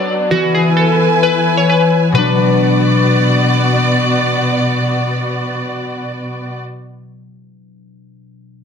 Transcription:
Already playing: F#3 B3 D4 F#4 D5
0.30 E3 B3 E4 F#4 B4 G#5
0.55 G#4
0.77 A4
1.23 B4
1.57 C#5
1.70 B4
2.12 B2 F#3 B3 F#4 B4 D5
2.18 D4

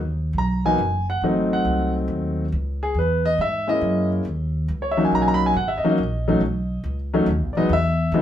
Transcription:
Already playing: D#2
0.33 B1
0.38 A#5
0.65 F#3 A#3 B3 D#4 G#5
0.78 F#1
1.10 F#5
1.21 G#1 F#3 A3 C4 D#4
1.26 D#5
1.53 F#5
1.65 C2
2.08 D#2
2.52 C#2
2.83 G#4
2.94 E2
2.99 B4
3.26 D#5
3.38 G#2 E5
3.67 G#3 A#3 C#4 E4 D#5
3.81 F#2
4.25 D#2
4.68 C#2
4.82 C#5
4.91 E5
4.97 F#3 A#3 C#4 D#4
5.05 G#5
5.12 B1 A#5
5.22 G#5
5.28 A#5
5.34 B5
5.46 G#5
5.54 G#1 F#5
5.68 E5
5.78 D#5
5.83 F#3 A#3 C#4 D#4, muted upright bass stroke
5.89 D#5
5.98 A#1
6.28 F#3 A3 C#4 D#4
6.40 B1
6.84 C#2
7.14 F#3 A3 C#4 D#4
7.26 D#2
7.41 B1
7.53 A1 F#3 D5
7.57 G#3 B3 D#4 D#5
7.69 E2 E5
8.12 G#2 F#3 G#3 B3 D#4

